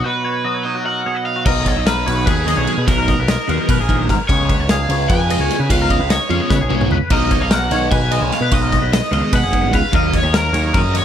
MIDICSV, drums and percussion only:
0, 0, Header, 1, 2, 480
1, 0, Start_track
1, 0, Tempo, 403769
1, 48, Time_signature, 7, 3, 24, 8
1, 13134, End_track
2, 0, Start_track
2, 0, Title_t, "Drums"
2, 1731, Note_on_c, 9, 49, 118
2, 1734, Note_on_c, 9, 36, 117
2, 1850, Note_off_c, 9, 49, 0
2, 1853, Note_off_c, 9, 36, 0
2, 1973, Note_on_c, 9, 36, 85
2, 1973, Note_on_c, 9, 51, 87
2, 1975, Note_on_c, 9, 38, 38
2, 2092, Note_off_c, 9, 36, 0
2, 2092, Note_off_c, 9, 51, 0
2, 2094, Note_off_c, 9, 38, 0
2, 2217, Note_on_c, 9, 51, 113
2, 2219, Note_on_c, 9, 38, 115
2, 2336, Note_off_c, 9, 51, 0
2, 2338, Note_off_c, 9, 38, 0
2, 2467, Note_on_c, 9, 51, 94
2, 2586, Note_off_c, 9, 51, 0
2, 2699, Note_on_c, 9, 36, 115
2, 2700, Note_on_c, 9, 51, 111
2, 2818, Note_off_c, 9, 36, 0
2, 2819, Note_off_c, 9, 51, 0
2, 2944, Note_on_c, 9, 51, 88
2, 2947, Note_on_c, 9, 38, 43
2, 3063, Note_off_c, 9, 51, 0
2, 3066, Note_off_c, 9, 38, 0
2, 3177, Note_on_c, 9, 51, 85
2, 3296, Note_off_c, 9, 51, 0
2, 3422, Note_on_c, 9, 36, 113
2, 3422, Note_on_c, 9, 51, 102
2, 3540, Note_off_c, 9, 36, 0
2, 3541, Note_off_c, 9, 51, 0
2, 3663, Note_on_c, 9, 36, 89
2, 3664, Note_on_c, 9, 51, 81
2, 3666, Note_on_c, 9, 38, 38
2, 3782, Note_off_c, 9, 36, 0
2, 3783, Note_off_c, 9, 51, 0
2, 3785, Note_off_c, 9, 38, 0
2, 3902, Note_on_c, 9, 51, 103
2, 3904, Note_on_c, 9, 38, 110
2, 4021, Note_off_c, 9, 51, 0
2, 4023, Note_off_c, 9, 38, 0
2, 4150, Note_on_c, 9, 51, 85
2, 4269, Note_off_c, 9, 51, 0
2, 4385, Note_on_c, 9, 36, 115
2, 4389, Note_on_c, 9, 51, 101
2, 4503, Note_off_c, 9, 36, 0
2, 4508, Note_off_c, 9, 51, 0
2, 4625, Note_on_c, 9, 36, 85
2, 4632, Note_on_c, 9, 51, 80
2, 4744, Note_off_c, 9, 36, 0
2, 4750, Note_off_c, 9, 51, 0
2, 4866, Note_on_c, 9, 36, 85
2, 4872, Note_on_c, 9, 51, 76
2, 4874, Note_on_c, 9, 38, 38
2, 4985, Note_off_c, 9, 36, 0
2, 4991, Note_off_c, 9, 51, 0
2, 4993, Note_off_c, 9, 38, 0
2, 5102, Note_on_c, 9, 36, 115
2, 5106, Note_on_c, 9, 51, 107
2, 5221, Note_off_c, 9, 36, 0
2, 5225, Note_off_c, 9, 51, 0
2, 5343, Note_on_c, 9, 36, 87
2, 5343, Note_on_c, 9, 51, 82
2, 5461, Note_off_c, 9, 36, 0
2, 5462, Note_off_c, 9, 51, 0
2, 5576, Note_on_c, 9, 51, 105
2, 5578, Note_on_c, 9, 38, 117
2, 5695, Note_off_c, 9, 51, 0
2, 5697, Note_off_c, 9, 38, 0
2, 5820, Note_on_c, 9, 51, 84
2, 5939, Note_off_c, 9, 51, 0
2, 6056, Note_on_c, 9, 51, 113
2, 6060, Note_on_c, 9, 36, 110
2, 6175, Note_off_c, 9, 51, 0
2, 6179, Note_off_c, 9, 36, 0
2, 6304, Note_on_c, 9, 51, 87
2, 6423, Note_off_c, 9, 51, 0
2, 6545, Note_on_c, 9, 51, 92
2, 6547, Note_on_c, 9, 38, 35
2, 6663, Note_off_c, 9, 51, 0
2, 6666, Note_off_c, 9, 38, 0
2, 6779, Note_on_c, 9, 36, 108
2, 6779, Note_on_c, 9, 51, 112
2, 6898, Note_off_c, 9, 36, 0
2, 6898, Note_off_c, 9, 51, 0
2, 7017, Note_on_c, 9, 36, 83
2, 7019, Note_on_c, 9, 51, 87
2, 7136, Note_off_c, 9, 36, 0
2, 7138, Note_off_c, 9, 51, 0
2, 7253, Note_on_c, 9, 51, 108
2, 7255, Note_on_c, 9, 38, 113
2, 7372, Note_off_c, 9, 51, 0
2, 7374, Note_off_c, 9, 38, 0
2, 7494, Note_on_c, 9, 51, 82
2, 7613, Note_off_c, 9, 51, 0
2, 7732, Note_on_c, 9, 38, 74
2, 7733, Note_on_c, 9, 36, 114
2, 7851, Note_off_c, 9, 38, 0
2, 7852, Note_off_c, 9, 36, 0
2, 7970, Note_on_c, 9, 48, 97
2, 8089, Note_off_c, 9, 48, 0
2, 8097, Note_on_c, 9, 47, 84
2, 8214, Note_on_c, 9, 45, 102
2, 8216, Note_off_c, 9, 47, 0
2, 8333, Note_off_c, 9, 45, 0
2, 8443, Note_on_c, 9, 57, 101
2, 8448, Note_on_c, 9, 36, 117
2, 8562, Note_off_c, 9, 57, 0
2, 8567, Note_off_c, 9, 36, 0
2, 8689, Note_on_c, 9, 51, 75
2, 8690, Note_on_c, 9, 36, 88
2, 8808, Note_off_c, 9, 51, 0
2, 8809, Note_off_c, 9, 36, 0
2, 8924, Note_on_c, 9, 51, 107
2, 8926, Note_on_c, 9, 38, 119
2, 9043, Note_off_c, 9, 51, 0
2, 9045, Note_off_c, 9, 38, 0
2, 9166, Note_on_c, 9, 51, 84
2, 9169, Note_on_c, 9, 38, 39
2, 9285, Note_off_c, 9, 51, 0
2, 9288, Note_off_c, 9, 38, 0
2, 9408, Note_on_c, 9, 51, 116
2, 9410, Note_on_c, 9, 36, 106
2, 9527, Note_off_c, 9, 51, 0
2, 9528, Note_off_c, 9, 36, 0
2, 9647, Note_on_c, 9, 51, 91
2, 9766, Note_off_c, 9, 51, 0
2, 9895, Note_on_c, 9, 51, 86
2, 9897, Note_on_c, 9, 38, 37
2, 10014, Note_off_c, 9, 51, 0
2, 10016, Note_off_c, 9, 38, 0
2, 10123, Note_on_c, 9, 51, 104
2, 10129, Note_on_c, 9, 36, 106
2, 10241, Note_off_c, 9, 51, 0
2, 10248, Note_off_c, 9, 36, 0
2, 10371, Note_on_c, 9, 36, 81
2, 10375, Note_on_c, 9, 51, 82
2, 10377, Note_on_c, 9, 38, 35
2, 10490, Note_off_c, 9, 36, 0
2, 10493, Note_off_c, 9, 51, 0
2, 10496, Note_off_c, 9, 38, 0
2, 10619, Note_on_c, 9, 51, 118
2, 10622, Note_on_c, 9, 38, 121
2, 10738, Note_off_c, 9, 51, 0
2, 10740, Note_off_c, 9, 38, 0
2, 10851, Note_on_c, 9, 51, 91
2, 10970, Note_off_c, 9, 51, 0
2, 11088, Note_on_c, 9, 51, 115
2, 11090, Note_on_c, 9, 36, 111
2, 11207, Note_off_c, 9, 51, 0
2, 11209, Note_off_c, 9, 36, 0
2, 11329, Note_on_c, 9, 51, 90
2, 11330, Note_on_c, 9, 36, 85
2, 11448, Note_off_c, 9, 51, 0
2, 11449, Note_off_c, 9, 36, 0
2, 11570, Note_on_c, 9, 36, 85
2, 11572, Note_on_c, 9, 51, 85
2, 11689, Note_off_c, 9, 36, 0
2, 11691, Note_off_c, 9, 51, 0
2, 11804, Note_on_c, 9, 51, 108
2, 11807, Note_on_c, 9, 36, 121
2, 11923, Note_off_c, 9, 51, 0
2, 11926, Note_off_c, 9, 36, 0
2, 12047, Note_on_c, 9, 51, 82
2, 12048, Note_on_c, 9, 36, 85
2, 12166, Note_off_c, 9, 36, 0
2, 12166, Note_off_c, 9, 51, 0
2, 12290, Note_on_c, 9, 51, 103
2, 12292, Note_on_c, 9, 38, 120
2, 12409, Note_off_c, 9, 51, 0
2, 12411, Note_off_c, 9, 38, 0
2, 12531, Note_on_c, 9, 51, 81
2, 12534, Note_on_c, 9, 38, 39
2, 12650, Note_off_c, 9, 51, 0
2, 12653, Note_off_c, 9, 38, 0
2, 12770, Note_on_c, 9, 51, 113
2, 12772, Note_on_c, 9, 36, 118
2, 12889, Note_off_c, 9, 51, 0
2, 12891, Note_off_c, 9, 36, 0
2, 13014, Note_on_c, 9, 51, 90
2, 13133, Note_off_c, 9, 51, 0
2, 13134, End_track
0, 0, End_of_file